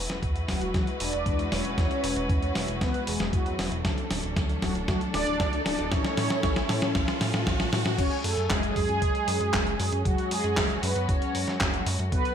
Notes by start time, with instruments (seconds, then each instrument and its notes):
Already playing: string section G#3 E4 F#4 B4, riser
0.10 analog synth bass E1, snare, closed hi-hat
0.23 analog synth bass E2, kick, closed hi-hat
0.36 closed hi-hat
0.48 analog synth bass E1, analog polysynth F#3 F#4, kick, snare, open hi-hat
0.61 analog synth bass E1, closed hi-hat
0.74 analog synth bass E2, analog polysynth F#3 F#4, kick, snare, closed hi-hat
0.87 closed hi-hat
1.00 analog synth bass E1, analog polysynth D4 D5, open hi-hat
1.13 analog synth bass E1, closed hi-hat
1.26 analog synth bass E2, kick, closed hi-hat
1.39 closed hi-hat
1.52 analog synth bass E1, analog polysynth C#4 C#5, snare, open hi-hat
1.65 analog synth bass E1, closed hi-hat
1.78 analog synth bass E2, kick, snare, closed hi-hat
1.91 closed hi-hat
2.04 analog synth bass E1, open hi-hat
2.16 analog synth bass E1, closed hi-hat
2.29 analog synth bass E2, kick, closed hi-hat
2.42 closed hi-hat
2.55 analog synth bass E1, snare, open hi-hat
2.68 analog synth bass E1, closed hi-hat
2.81 analog synth bass E2, analog polysynth B3 B4, kick, snare, closed hi-hat
2.94 closed hi-hat
3.07 analog synth bass E1, analog polysynth G#3 G#4, open hi-hat
3.20 analog synth bass E1, snare, closed hi-hat
3.33 analog synth bass E2, analog polysynth F#3 F#4, kick, closed hi-hat
3.46 closed hi-hat
3.59 analog synth bass E1, snare, open hi-hat
3.72 analog synth bass E1, closed hi-hat
3.85 analog synth bass D2, string section F#3 A3 D4 A4, kick, snare, closed hi-hat
3.98 closed hi-hat
4.10 analog synth bass D1, snare, open hi-hat
4.23 analog synth bass D1, closed hi-hat
4.36 analog synth bass D2, kick, snare, closed hi-hat
4.49 closed hi-hat
4.62 analog synth bass D1, analog polysynth F#3 F#4, kick, snare, open hi-hat
4.75 analog synth bass D1, closed hi-hat
4.88 analog synth bass D2, analog polysynth F#3 F#4, kick, snare, closed hi-hat
5.01 closed hi-hat
5.14 analog synth bass D1, analog polysynth D4 D5, snare, open hi-hat
5.27 analog synth bass D1, closed hi-hat
5.40 analog synth bass D2, kick, snare, closed hi-hat
5.53 closed hi-hat
5.65 analog synth bass D1, analog polysynth D4 D5, snare, open hi-hat
5.79 analog synth bass D1, closed hi-hat
5.91 analog synth bass A1, string section E3 C#4, analog polysynth C#4 C#5, kick, snare, closed hi-hat
6.05 snare, closed hi-hat
6.17 analog synth bass A2, snare, open hi-hat
6.30 analog synth bass A2, snare, closed hi-hat
6.43 analog synth bass A1, kick, snare, closed hi-hat
6.56 snare, closed hi-hat
6.69 analog synth bass A2, snare, open hi-hat
6.82 analog synth bass A2, snare
6.95 analog synth bass A1, kick, snare, closed hi-hat
7.08 snare, closed hi-hat
7.21 analog synth bass A2, snare, open hi-hat
7.34 analog synth bass A2, snare, closed hi-hat
7.47 analog synth bass A1, kick, snare, closed hi-hat
7.60 snare, closed hi-hat
7.73 analog synth bass A2, snare, open hi-hat
7.86 analog synth bass A2, snare, closed hi-hat
7.98 analog synth bass F#1, string section F#3 G#3 C#4 G#4, analog polysynth C#4 C#5, kick, closed hi-hat, crash
8.11 closed hi-hat
8.24 analog synth bass F#2, analog polysynth A3 A4, open hi-hat
8.37 analog synth bass F#2, closed hi-hat
8.50 analog synth bass F#1, analog polysynth G#3 G#4, kick, snare, clap, closed hi-hat
8.63 closed hi-hat
8.76 analog synth bass F#2, analog polysynth G#3 G#4, kick, open hi-hat
8.89 analog synth bass F#2, closed hi-hat
9.02 analog synth bass F#1, kick, closed hi-hat
9.15 closed hi-hat
9.28 analog synth bass F#2, open hi-hat
9.41 analog synth bass F#2, closed hi-hat
9.54 analog synth bass F#1, kick, snare, clap, closed hi-hat
9.67 closed hi-hat
9.79 analog synth bass F#2, open hi-hat
9.92 analog synth bass F#2, closed hi-hat
10.05 analog synth bass F#1, analog polysynth F#3 F#4, string section F#4, kick, closed hi-hat
10.18 closed hi-hat
10.31 analog synth bass F#2, analog polysynth G#3 G#4, open hi-hat
10.44 analog synth bass F#2, closed hi-hat
10.57 analog synth bass F#1, kick, snare, clap, open hi-hat
10.70 closed hi-hat
10.83 analog synth bass F#2, analog polysynth B3 B4, open hi-hat
10.96 analog synth bass F#2, closed hi-hat
11.09 analog synth bass F#1, analog polysynth C#4 C#5, kick, closed hi-hat
11.22 closed hi-hat
11.35 analog synth bass F#2, open hi-hat
11.48 analog synth bass F#2, snare, closed hi-hat
11.60 analog synth bass F#1, kick, snare, clap, closed hi-hat
11.74 closed hi-hat
11.86 analog synth bass F#2, open hi-hat
11.99 analog synth bass F#2, closed hi-hat
12.12 analog synth bass B1, string section D3 B3 F#4, analog polysynth B3 B4, kick, closed hi-hat
12.25 closed hi-hat